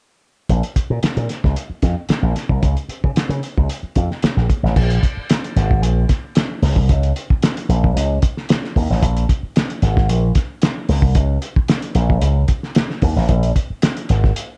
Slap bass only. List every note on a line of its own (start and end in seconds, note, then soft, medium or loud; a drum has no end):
0.49 0.61 A#1 medium
0.76 muted slap bass stroke soft
0.90 1.00 A#2 medium
1.03 muted slap bass stroke soft
1.17 1.27 A#2 medium
1.44 1.54 C#2 medium
1.70 muted slap bass stroke soft
1.83 1.94 F2 medium
2.09 muted slap bass stroke soft
2.23 2.33 A#1 medium
2.50 2.60 C2 medium
2.63 2.74 C#2 medium
2.89 muted slap bass stroke soft
3.04 3.14 C#3 medium
3.15 muted slap bass stroke soft
3.29 3.40 C#3 medium
3.57 3.67 C#2 medium
3.83 muted slap bass stroke soft
3.96 4.08 F2 medium
4.23 muted slap bass stroke soft
4.37 4.47 A#1 medium
4.63 4.74 A1 medium
4.76 4.98 A#1 loud
5.17 muted slap bass stroke soft
5.56 5.82 G#1 loud
5.82 6.04 A#1 medium
6.62 6.76 C#2 loud
6.76 6.90 C2 loud
6.90 7.11 C#2 loud
7.30 muted slap bass stroke soft
7.69 7.91 A#1 medium
7.96 8.17 C#2 loud
8.76 8.87 D#2 loud
8.90 9.02 A1 medium
9.02 9.24 A#1 loud
9.43 muted slap bass stroke soft
9.82 10.09 G#1 medium
10.09 10.31 A#1 medium
10.89 11.02 C#2 loud
11.02 11.15 C2 medium
11.15 11.37 C#2 loud
11.56 muted slap bass stroke soft
11.95 12.17 A#1 medium
12.22 12.43 C#2 loud
13.02 13.14 D#2 medium
13.16 13.26 A1 medium
13.29 13.51 A#1 loud
13.70 muted slap bass stroke soft
14.10 14.31 G#1 medium